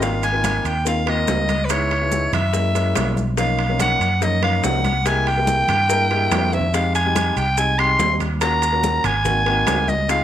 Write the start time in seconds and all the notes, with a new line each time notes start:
Already playing: G#1
0.00 A#3 C4 D#4 F4 F5, high bongo, high conga, high timbale, maracas
0.23 G#5, high conga, high timbale, maracas
0.32 A#3 C4 D#4 F4
0.44 high bongo, high conga, high timbale, low timbale, maracas
0.65 D#2 G5, high conga, high timbale, maracas
0.85 A#3 C4 D#4 F4 F5, high bongo, high conga, maracas
1.06 A#3 C4 D#4 F4 D#5, high conga, high timbale
1.27 C#2, high bongo, low bongo, high conga, low timbale, maracas
1.49 high conga, high timbale, maracas
1.65 B4
1.69 G#3 B3 D#4 E4 C#5, high bongo, high conga, high timbale, maracas
1.91 high bongo, high conga, high timbale
2.01 G#3 B3 D#4 E4
2.12 high bongo, high conga, low timbale, maracas
2.33 F#2 E5, high conga, low conga, high timbale, maracas
2.53 G#3 A#3 C#4 E4, high bongo, high conga, maracas
2.74 G#3 A#3 C#4 E4, high bongo, high conga, high timbale, maracas
2.95 B1, high bongo, low bongo, high conga, high timbale, low timbale, maracas
3.17 high bongo, high conga, maracas
3.37 F3 A#3 C#4 D#4 F5, high bongo, high timbale, maracas
3.59 high conga, high timbale
3.69 F3 A#3 C#4 D#4
3.80 F#5, high bongo, high conga, high timbale, low timbale, maracas
4.00 F#2, high conga, high timbale, maracas
4.21 F3 A#3 C#4 D#4 D#5, high bongo, high conga, maracas
4.42 F3 A#3 C#4 D#4 F5, high conga, high timbale
4.63 C2 F#5, high bongo, low bongo, high conga, low timbale, maracas
4.85 high conga, high timbale, maracas
5.05 G#3 A#3 E4 G4 G#5, high bongo, high conga, high timbale, maracas
5.26 G5, high bongo, high conga, high timbale
5.37 G#3 A#3 E4 G4
5.47 high bongo, high conga, low timbale, maracas
5.68 G2, high conga, low conga, high timbale, maracas
5.89 G#3 A#3 E4 A#4, high bongo, maracas
6.10 G#3 A#3 E4 G4, high bongo, high conga, high timbale
6.31 F2, high bongo, low bongo, high conga, high timbale, low timbale, maracas
6.53 E5, high bongo, high timbale, maracas
6.59 low conga
6.73 G#3 C4 D#4 G4 F5, high bongo, high conga, high timbale, maracas
6.95 G#5, high conga, high timbale, maracas
7.05 G3 G#3 C4 D#4
7.16 high bongo, high conga, high timbale, low timbale, maracas
7.37 C2 G5, high timbale, maracas
7.57 G#3 C4 D#4 G4 G#5, high bongo, high conga, maracas
7.78 G#3 C4 D#4 G4 C6, high conga, high timbale
7.99 D#2, high bongo, low bongo, high conga, low timbale, maracas
8.20 high conga, high timbale, maracas
8.41 A#3 C#4 F4 F#4 A#5, high bongo, high timbale, maracas
8.62 high bongo, high conga, high timbale, maracas
8.72 A#3 C#4 F4 F#4
8.83 high bongo, high conga, low timbale, maracas
9.04 G#1 G#5, high conga, low conga, high timbale, maracas
9.25 A#3 C4 D#4 F#4, high bongo, high conga, low conga, maracas
9.46 A#3 C4 D#4 F#4, high bongo, high conga, high timbale
9.67 C#2, high bongo, low bongo, high conga, high timbale, low timbale, maracas
9.88 D#5, high bongo, high conga, maracas
10.08 G#3 C4 D#4 F4 F5, high bongo, high timbale, maracas